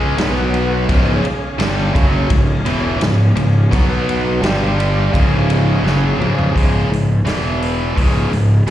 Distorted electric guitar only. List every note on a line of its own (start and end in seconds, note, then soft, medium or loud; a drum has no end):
0.00 0.17 C#3 medium
0.00 0.18 G#3 medium
0.00 0.18 C#4 loud
0.18 0.88 B2 medium
0.18 0.88 F#3 medium
0.18 0.88 B3 medium
0.89 1.23 C#2 medium
0.89 1.24 G#2 medium
0.89 1.24 C#3 loud
1.24 muted distorted electric guitar stroke medium
1.59 1.93 G2 medium
1.59 1.93 D3 loud
1.59 1.94 G3 medium
1.94 2.29 F#2 medium
1.94 2.29 C#3 medium
1.94 2.29 F#3 loud
2.29 2.58 C#2 medium
2.29 2.58 G#2 medium
2.66 2.99 E2 medium
2.66 2.99 B2 medium
2.66 3.00 E3 loud
2.99 3.28 C#2 medium
2.99 3.29 G#2 medium
3.36 3.64 C#2 medium
3.36 3.65 G#2 medium
3.71 4.41 B2 medium
3.71 4.41 F#3 loud
3.71 4.41 B3 loud
4.42 5.12 G2 medium
4.42 5.12 D3 medium
4.42 5.12 G3 medium
5.12 5.82 C#2 medium
5.12 5.83 G#2 medium
5.12 5.83 C#3 loud
5.84 6.18 F#2 medium
5.84 6.18 C#3 medium
5.84 6.19 F#3 medium
6.19 6.53 C#2 medium
6.19 6.54 G#2 medium
6.19 6.54 C#3 medium
6.54 6.88 C#2 medium
6.54 6.88 G#2 medium
6.54 6.89 C#3 medium
6.89 7.18 C#2 medium
6.89 7.18 G#2 medium
7.25 7.95 E2 medium
7.25 7.95 B2 medium
7.25 7.96 E3 medium
7.96 8.29 C#2 medium
7.96 8.29 G#2 medium
7.96 8.31 C#3 medium
8.31 8.60 C#2 medium
8.31 8.60 G#2 medium